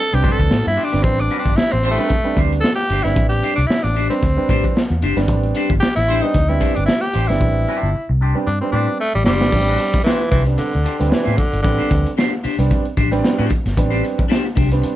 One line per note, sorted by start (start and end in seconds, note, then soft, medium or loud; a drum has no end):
0.00 0.16 A4 loud
0.12 0.24 C2 medium
0.12 0.48 G3 medium
0.12 0.48 B3 medium
0.12 0.49 C4 medium
0.12 0.49 D4 medium
0.12 0.34 G4 loud
0.12 muted clean electric guitar stroke soft
0.12 closed hi-hat soft
0.23 0.38 G2 medium
0.23 0.38 D4 medium
0.23 0.38 G4 loud
0.23 0.38 C5 medium
0.23 kick medium
0.23 closed hi-hat medium
0.32 0.67 A4 medium
0.39 0.50 D2 medium
0.39 muted clean electric guitar stroke soft
0.39 kick medium
0.39 closed hi-hat soft
0.51 0.65 A2 loud
0.51 muted clean electric guitar stroke soft
0.51 snare loud
0.65 0.77 G2 medium
0.65 0.85 E4 loud
0.65 muted clean electric guitar stroke soft
0.65 closed hi-hat soft
0.76 0.91 D4 medium
0.76 0.91 G4 medium
0.76 0.92 C5 medium
0.76 open hi-hat medium
0.84 1.05 D4 medium
0.92 1.03 G1 loud
0.92 1.41 G3 medium
0.92 1.41 B3 medium
0.92 1.42 C4 medium
0.92 1.42 D4 medium
0.92 muted clean electric guitar stroke medium
0.92 snare soft
0.92 closed hi-hat medium
1.03 1.28 A1 loud
1.03 1.22 C4 loud
1.03 kick loud
1.03 closed hi-hat medium
1.19 1.39 D4 medium
1.19 closed hi-hat soft
1.30 1.51 D4 medium
1.30 1.51 G4 medium
1.30 1.52 C5 loud
1.30 closed hi-hat medium
1.39 1.58 D4 medium
1.46 1.56 G1 medium
1.46 kick medium
1.46 closed hi-hat medium
1.56 1.74 E4 loud
1.56 muted fingered electric bass stroke soft
1.56 snare loud
1.72 1.97 A1 medium
1.72 1.90 C4 loud
1.72 muted clean electric guitar stroke soft
1.72 closed hi-hat soft
1.83 2.19 G3 medium
1.83 1.98 D4 medium
1.83 2.19 E4 medium
1.83 1.98 G4 medium
1.83 2.19 C5 loud
1.83 1.98 C5 medium
1.83 closed hi-hat medium
1.91 2.41 A3 loud
1.98 2.09 G3 medium
1.98 2.09 B3 medium
1.98 2.09 C4 medium
1.98 2.10 D4 medium
1.98 muted clean electric guitar stroke soft
1.98 closed hi-hat medium
2.09 muted clean electric guitar stroke soft
2.09 kick medium
2.09 closed hi-hat medium
2.24 2.60 G3 medium
2.24 2.61 B3 medium
2.24 2.61 C4 medium
2.24 2.61 D4 loud
2.24 muted clean electric guitar stroke soft
2.37 2.61 D2 medium
2.37 2.51 D4 medium
2.37 2.52 G4 medium
2.37 2.52 C5 loud
2.37 kick loud
2.37 closed hi-hat medium
2.53 muted clean electric guitar stroke medium
2.53 closed hi-hat soft
2.60 2.75 A4 loud
2.60 snare loud
2.75 3.05 G4 loud
2.75 muted clean electric guitar stroke soft
2.90 3.04 G1 medium
2.90 3.05 D4 medium
2.90 3.04 G4 loud
2.90 3.04 C5 medium
2.90 closed hi-hat medium
3.03 3.17 G1 medium
3.03 3.53 G3 medium
3.03 3.53 B3 medium
3.03 3.54 C4 medium
3.03 3.54 D4 medium
3.03 3.28 E4 medium
3.03 muted clean electric guitar stroke soft
3.03 snare soft
3.03 closed hi-hat medium
3.16 3.40 A1 loud
3.16 kick loud
3.16 closed hi-hat medium
3.29 3.55 G4 medium
3.29 closed hi-hat soft
3.42 3.57 D4 medium
3.42 3.57 G4 loud
3.42 3.58 C5 loud
3.42 closed hi-hat medium
3.56 3.68 C2 medium
3.56 3.68 D4 medium
3.56 closed hi-hat medium
3.66 3.84 E4 medium
3.66 muted fingered electric bass stroke soft
3.66 muted clean electric guitar stroke soft
3.66 snare loud
3.83 4.08 A1 medium
3.83 4.09 D4 medium
3.83 muted clean electric guitar stroke soft
3.83 closed hi-hat soft
3.96 4.10 D4 medium
3.96 4.10 G4 medium
3.96 4.11 C5 medium
3.96 closed hi-hat medium
4.10 4.21 G3 medium
4.10 4.22 B3 medium
4.10 4.86 C4 medium
4.10 4.22 C4 medium
4.10 4.22 D4 medium
4.10 muted clean electric guitar stroke medium
4.10 closed hi-hat medium
4.23 4.36 D2 medium
4.23 muted clean electric guitar stroke soft
4.23 kick loud
4.23 closed hi-hat medium
4.37 4.73 G3 medium
4.37 4.73 C4 medium
4.37 4.73 D4 medium
4.37 4.73 B4 medium
4.37 muted clean electric guitar stroke soft
4.49 4.63 A2 medium
4.49 4.63 D4 medium
4.49 4.64 G4 medium
4.49 4.63 C5 loud
4.49 kick loud
4.49 closed hi-hat medium
4.64 muted clean electric guitar stroke medium
4.64 kick medium
4.64 closed hi-hat medium
4.76 muted clean electric guitar stroke soft
4.76 snare loud
4.90 5.01 E2 medium
4.90 muted clean electric guitar stroke soft
4.90 closed hi-hat soft
5.02 5.15 F#1 loud
5.02 5.17 D4 medium
5.02 5.17 G4 medium
5.02 5.16 C5 loud
5.02 closed hi-hat medium
5.16 5.28 G1 medium
5.16 5.65 G3 loud
5.16 5.65 B3 medium
5.16 5.66 C4 medium
5.16 5.66 D4 loud
5.16 muted clean electric guitar stroke soft
5.16 snare soft
5.16 closed hi-hat medium
5.28 5.52 A1 loud
5.28 kick loud
5.28 closed hi-hat medium
5.43 closed hi-hat soft
5.55 5.70 D4 medium
5.55 5.70 G4 medium
5.55 5.70 C5 medium
5.55 closed hi-hat medium
5.70 5.81 G1 medium
5.70 kick medium
5.70 closed hi-hat medium
5.80 5.95 G4 loud
5.80 muted clean electric guitar stroke soft
5.80 muted fingered electric bass stroke medium
5.80 snare loud
5.96 6.21 A1 medium
5.96 6.24 E4 loud
5.96 muted clean electric guitar stroke soft
5.96 closed hi-hat soft
6.08 6.25 G3 loud
6.08 6.23 D4 medium
6.08 6.25 E4 medium
6.08 6.23 G4 medium
6.08 6.25 C5 loud
6.08 6.22 C5 medium
6.08 closed hi-hat medium
6.22 6.34 G3 medium
6.22 6.34 B3 medium
6.22 6.34 C4 medium
6.22 6.34 D4 loud
6.22 6.50 D#4 loud
6.22 muted clean electric guitar stroke soft
6.22 closed hi-hat medium
6.34 6.58 D2 loud
6.34 muted clean electric guitar stroke soft
6.34 kick medium
6.34 closed hi-hat medium
6.49 6.85 G3 medium
6.49 6.85 B3 medium
6.49 6.85 C4 medium
6.49 6.85 D4 loud
6.49 6.76 E4 medium
6.49 muted clean electric guitar stroke medium
6.60 6.75 D4 medium
6.60 6.75 G4 medium
6.60 6.75 C5 loud
6.60 kick medium
6.60 closed hi-hat medium
6.75 6.87 G1 medium
6.75 6.85 D4 medium
6.75 muted clean electric guitar stroke soft
6.75 closed hi-hat medium
6.86 7.03 E4 medium
6.86 muted clean electric guitar stroke soft
6.86 snare loud
7.01 7.29 G4 loud
7.01 muted clean electric guitar stroke soft
7.01 closed hi-hat soft
7.14 7.28 A1 medium
7.14 7.28 D4 medium
7.14 7.28 G4 medium
7.14 7.27 C5 medium
7.14 closed hi-hat medium
7.28 7.40 G1 medium
7.28 7.78 G3 medium
7.28 7.78 B3 medium
7.28 7.78 C4 medium
7.28 7.78 D4 medium
7.28 8.08 E4 medium
7.28 muted clean electric guitar stroke soft
7.28 snare soft
7.28 closed hi-hat medium
7.41 7.65 A1 loud
7.41 kick loud
7.68 7.88 D4 medium
7.68 7.88 G4 loud
7.68 7.89 C5 loud
7.83 7.93 G1 loud
7.95 muted fingered electric bass stroke soft
7.95 muted clean electric guitar stroke soft
8.09 8.33 C2 medium
8.09 muted clean electric guitar stroke soft
8.21 8.35 D4 medium
8.21 8.35 G4 medium
8.21 8.36 C5 medium
8.34 8.46 G3 medium
8.34 8.46 B3 medium
8.34 8.46 C4 medium
8.34 8.46 D4 medium
8.34 muted clean electric guitar stroke soft
8.47 8.60 G2 loud
8.47 8.60 D4 medium
8.47 muted clean electric guitar stroke soft
8.61 8.97 G3 medium
8.61 8.97 B3 medium
8.61 8.71 C4 medium
8.61 8.98 C4 medium
8.61 8.98 D4 medium
8.61 muted clean electric guitar stroke soft
8.72 8.86 A2 loud
8.72 8.97 D4 medium
8.72 8.87 D4 medium
8.72 8.87 G4 medium
8.72 8.86 C5 medium
8.87 muted clean electric guitar stroke medium
9.00 9.14 A3 loud
9.00 muted clean electric guitar stroke soft
9.15 9.25 A1 medium
9.15 9.25 G3 loud
9.15 muted clean electric guitar stroke soft
9.25 9.42 F#1 medium
9.25 10.01 G3 loud
9.25 9.40 D4 medium
9.25 9.40 G4 medium
9.25 9.40 C5 medium
9.25 snare loud
9.40 9.52 G1 medium
9.40 9.51 G3 medium
9.40 9.51 B3 medium
9.40 9.52 C4 medium
9.40 9.52 D4 medium
9.40 muted clean electric guitar stroke soft
9.40 snare loud
9.52 9.76 A1 loud
9.52 9.96 G3 medium
9.52 9.97 B3 medium
9.52 9.97 C4 medium
9.52 9.97 D4 medium
9.52 muted clean electric guitar stroke soft
9.52 kick loud
9.52 crash medium
9.67 9.79 D4 medium
9.67 9.80 G4 medium
9.67 9.80 C5 medium
9.67 closed hi-hat soft
9.79 muted clean electric guitar stroke soft
9.79 closed hi-hat medium
9.94 muted fingered electric bass stroke medium
9.94 muted clean electric guitar stroke medium
9.94 kick loud
9.94 closed hi-hat medium
10.04 10.29 E3 loud
10.04 10.20 D4 medium
10.04 10.20 G4 loud
10.04 10.19 C5 loud
10.04 snare loud
10.21 muted clean electric guitar stroke soft
10.31 10.56 C2 medium
10.31 10.43 E3 loud
10.31 10.42 D4 medium
10.31 10.43 G4 medium
10.31 10.43 C5 medium
10.31 kick medium
10.31 open hi-hat medium
10.46 10.71 G3 medium
10.46 10.71 B3 medium
10.46 10.71 C4 medium
10.46 10.71 D4 medium
10.46 muted clean electric guitar stroke soft
10.46 closed hi-hat medium
10.57 11.12 D3 medium
10.57 muted clean electric guitar stroke soft
10.57 muted fingered electric bass stroke soft
10.57 closed hi-hat medium
10.73 10.85 D2 medium
10.73 closed hi-hat soft
10.83 10.95 D4 medium
10.83 10.96 G4 medium
10.83 10.96 C5 medium
10.83 closed hi-hat medium
10.98 11.11 D2 medium
10.98 11.30 G3 medium
10.98 11.30 B3 medium
10.98 11.30 C4 medium
10.98 11.30 D4 medium
10.98 muted clean electric guitar stroke soft
10.98 closed hi-hat soft
11.10 11.38 E3 medium
11.10 muted clean electric guitar stroke soft
11.10 snare loud
11.25 11.37 A2 medium
11.25 11.36 D4 medium
11.25 11.37 G4 medium
11.25 11.37 C5 medium
11.25 closed hi-hat soft
11.37 11.62 D3 medium
11.37 muted clean electric guitar stroke soft
11.37 kick medium
11.37 closed hi-hat medium
11.51 11.63 G1 medium
11.51 muted clean electric guitar stroke medium
11.51 closed hi-hat medium
11.62 11.78 A1 loud
11.62 12.13 D3 medium
11.62 12.08 G3 medium
11.62 12.09 B3 medium
11.62 12.09 C4 medium
11.62 12.09 D4 medium
11.62 muted clean electric guitar stroke soft
11.62 kick loud
11.62 closed hi-hat medium
11.78 11.89 D4 medium
11.78 11.89 G4 medium
11.78 11.90 C5 medium
11.78 closed hi-hat soft
11.90 12.04 D2 loud
11.90 muted clean electric guitar stroke medium
11.90 kick medium
11.90 closed hi-hat medium
12.04 muted clean electric guitar stroke medium
12.04 closed hi-hat medium
12.17 12.31 D4 medium
12.17 12.31 G4 medium
12.17 12.31 C5 loud
12.17 snare loud
12.32 muted clean electric guitar stroke soft
12.44 12.55 D4 medium
12.44 12.55 G4 medium
12.44 12.55 C5 medium
12.44 muted fingered electric bass stroke medium
12.44 open hi-hat medium
12.58 12.69 C2 loud
12.58 12.83 G3 loud
12.58 12.83 B3 medium
12.58 12.83 C4 medium
12.58 12.84 D4 loud
12.58 closed hi-hat medium
12.70 muted clean electric guitar stroke medium
12.70 kick loud
12.70 closed hi-hat medium
12.85 closed hi-hat soft
12.97 13.21 A1 medium
12.97 13.08 D4 medium
12.97 13.08 G4 medium
12.97 13.08 C5 medium
12.97 kick loud
12.97 closed hi-hat medium
13.11 13.42 G3 loud
13.11 13.42 B3 loud
13.11 13.42 C4 loud
13.11 13.43 D4 loud
13.11 muted clean electric guitar stroke medium
13.11 closed hi-hat medium
13.24 muted clean electric guitar stroke soft
13.24 snare loud
13.38 13.49 A2 medium
13.38 13.50 D4 medium
13.38 13.50 G4 medium
13.38 13.50 C5 loud
13.38 closed hi-hat soft
13.50 muted clean electric guitar stroke soft
13.50 kick medium
13.50 closed hi-hat medium
13.66 13.76 G1 loud
13.66 muted clean electric guitar stroke soft
13.66 snare soft
13.66 closed hi-hat medium
13.76 14.01 A1 loud
13.76 14.21 G3 medium
13.76 14.21 B3 medium
13.76 14.22 C4 medium
13.76 14.22 D4 medium
13.76 muted clean electric guitar stroke soft
13.76 kick medium
13.76 closed hi-hat medium
13.90 14.02 D4 medium
13.90 14.02 G4 medium
13.90 14.02 C5 medium
13.90 closed hi-hat soft
14.04 muted clean electric guitar stroke soft
14.04 closed hi-hat medium
14.18 muted clean electric guitar stroke medium
14.18 muted fingered electric bass stroke medium
14.18 kick medium
14.18 closed hi-hat soft
14.28 14.43 D4 medium
14.28 14.44 G4 loud
14.28 14.44 C5 loud
14.28 snare loud
14.45 muted clean electric guitar stroke soft
14.45 closed hi-hat soft
14.55 14.81 C2 loud
14.55 14.67 D4 medium
14.55 14.67 G4 medium
14.55 14.68 C5 medium
14.55 kick medium
14.55 open hi-hat medium
14.70 14.96 G3 medium
14.70 14.96 B3 medium
14.70 14.96 C4 medium
14.70 14.96 D4 loud
14.70 muted clean electric guitar stroke medium
14.70 closed hi-hat medium
14.81 muted clean electric guitar stroke soft
14.81 muted fingered electric bass stroke medium
14.81 closed hi-hat medium